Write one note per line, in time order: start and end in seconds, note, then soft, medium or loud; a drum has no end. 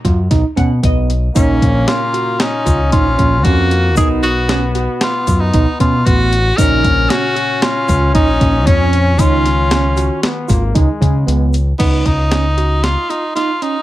0.00 1.31 B2 medium
0.00 1.32 A#3 medium
0.00 1.32 D#4 medium
0.05 0.27 F#2 medium
0.05 0.19 F4 medium
0.05 kick medium
0.05 closed hi-hat medium
0.31 0.42 B1 medium
0.31 0.45 D#4 medium
0.31 kick medium
0.31 snare soft
0.31 closed hi-hat medium
0.56 0.79 B2 medium
0.56 0.70 C#4 medium
0.56 0.81 F#5 medium
0.56 kick medium
0.56 closed hi-hat medium
0.83 1.28 B1 medium
0.83 1.11 B3 medium
0.83 1.33 D#5 medium
0.83 kick loud
0.83 closed hi-hat medium
1.10 closed hi-hat medium
1.35 1.58 A#1 medium
1.35 3.93 A#2 medium
1.35 3.93 C#3 medium
1.35 2.41 A#3 medium
1.35 1.89 C#4 medium
1.35 3.94 C#4 medium
1.35 1.63 D#4 medium
1.35 kick loud
1.35 closed hi-hat medium
1.35 shaker medium
1.62 1.84 A#1 medium
1.62 kick medium
1.62 closed hi-hat medium
1.87 2.01 C#4 medium
1.87 2.41 F4 medium
1.87 snare loud
1.87 closed hi-hat medium
2.14 2.42 F#4 medium
2.14 closed hi-hat medium
2.39 3.46 C#4 loud
2.39 2.92 D#4 medium
2.39 snare loud
2.39 closed hi-hat medium
2.65 2.93 C#2 medium
2.65 2.80 F4 medium
2.65 kick medium
2.65 closed hi-hat medium
2.65 shaker soft
2.92 3.15 A#1 loud
2.92 3.06 D#4 medium
2.92 3.46 F4 medium
2.92 kick loud
2.92 closed hi-hat medium
3.18 3.45 A#1 medium
3.18 3.32 C#4 medium
3.18 kick medium
3.18 closed hi-hat medium
3.44 3.97 F2 medium
3.44 3.99 A#3 medium
3.44 3.73 C#4 medium
3.44 3.97 F#4 loud
3.44 kick loud
3.44 closed hi-hat medium
3.71 closed hi-hat medium
3.96 4.87 B1 loud
3.96 6.54 B2 medium
3.96 6.31 B3 medium
3.96 4.25 D#4 medium
3.96 6.55 D#4 medium
3.96 4.09 G#4 medium
3.96 6.54 A#4 medium
3.96 kick loud
3.96 closed hi-hat medium
3.96 shaker medium
4.23 4.71 F#4 medium
4.23 closed hi-hat medium
4.49 4.63 C#4 medium
4.49 snare loud
4.49 closed hi-hat medium
4.75 5.03 F#4 medium
4.75 closed hi-hat medium
5.01 5.42 F4 medium
5.01 snare loud
5.01 closed hi-hat medium
5.27 5.50 F#2 medium
5.27 5.41 F4 medium
5.27 kick medium
5.27 closed hi-hat medium
5.27 shaker soft
5.40 5.80 D#4 medium
5.54 5.65 B1 medium
5.54 5.68 D#4 medium
5.54 kick loud
5.54 closed hi-hat medium
5.80 6.02 B2 loud
5.80 5.94 C#4 medium
5.80 6.07 F4 medium
5.80 kick medium
5.80 closed hi-hat medium
6.06 6.51 A1 loud
6.06 6.34 B3 medium
6.06 6.59 F#4 loud
6.06 kick loud
6.06 closed hi-hat medium
6.33 closed hi-hat medium
6.57 6.81 A#1 medium
6.57 8.63 A#2 medium
6.57 8.63 C#3 medium
6.57 9.15 C#4 loud
6.57 8.63 C#4 medium
6.57 6.86 D#4 medium
6.57 7.11 A#4 loud
6.57 kick loud
6.57 closed hi-hat medium
6.57 shaker medium
6.84 7.06 A#1 medium
6.84 kick medium
6.84 closed hi-hat medium
7.10 7.24 C#4 medium
7.10 7.64 F#4 loud
7.10 snare loud
7.10 closed hi-hat medium
7.36 7.64 F#4 medium
7.36 closed hi-hat medium
7.62 8.14 F4 medium
7.62 snare loud
7.62 closed hi-hat medium
7.88 8.15 C#2 medium
7.88 8.02 F4 medium
7.88 kick medium
7.88 closed hi-hat medium
7.88 shaker soft
8.14 8.37 A#1 medium
8.14 8.28 D#4 medium
8.14 8.68 D#4 medium
8.14 kick loud
8.14 closed hi-hat medium
8.40 8.67 A#1 medium
8.40 8.54 C#4 medium
8.40 kick medium
8.40 closed hi-hat medium
8.66 9.19 F2 medium
8.66 9.19 A#2 soft
8.66 9.19 F3 soft
8.66 8.94 C#4 medium
8.66 9.21 C#4 medium
8.66 9.19 C#4 soft
8.66 kick loud
8.66 closed hi-hat medium
8.93 closed hi-hat medium
9.18 10.08 C#2 medium
9.18 11.75 D#3 medium
9.18 10.19 C#4 loud
9.18 11.76 C#4 medium
9.18 9.46 D#4 medium
9.18 11.75 F4 medium
9.18 10.23 F4 medium
9.18 kick loud
9.18 closed hi-hat medium
9.18 shaker soft
9.46 snare soft
9.46 closed hi-hat medium
9.70 9.84 C#4 medium
9.70 snare loud
9.70 closed hi-hat medium
9.70 shaker soft
9.96 10.24 F#4 medium
9.96 closed hi-hat medium
9.96 shaker soft
10.22 10.51 B3 medium
10.22 snare loud
10.22 closed hi-hat medium
10.48 10.72 G#1 medium
10.48 10.77 A#3 medium
10.48 10.62 F4 medium
10.48 kick medium
10.48 closed hi-hat medium
10.48 shaker soft
10.75 10.87 C#2 medium
10.75 11.53 G#3 medium
10.75 10.89 D#4 medium
10.75 kick loud
10.75 closed hi-hat medium
11.01 11.24 C#3 medium
11.01 11.15 C#4 medium
11.01 kick medium
11.01 closed hi-hat medium
11.27 11.72 C#2 medium
11.27 11.55 B3 medium
11.27 closed hi-hat medium
11.53 closed hi-hat medium
11.53 shaker soft
11.79 12.02 C#2 medium
11.79 12.07 B3 medium
11.79 12.07 D#4 medium
11.79 kick loud
11.79 closed hi-hat medium
11.79 crash medium
12.06 12.95 C#2 medium
12.06 12.85 D#4 medium
12.06 kick medium
12.06 closed hi-hat soft
12.32 12.46 C#4 medium
12.32 snare medium
12.32 closed hi-hat medium
12.58 12.85 F#4 medium
12.58 closed hi-hat medium
12.83 13.11 F4 medium
12.83 snare medium
12.83 closed hi-hat medium
13.10 13.35 D#4 medium
13.10 13.24 F4 medium
13.10 closed hi-hat soft
13.35 13.50 D#4 medium
13.35 13.64 F4 medium
13.35 snare soft
13.35 closed hi-hat medium
13.62 13.76 C#4 medium
13.62 13.82 D#4 medium
13.62 closed hi-hat medium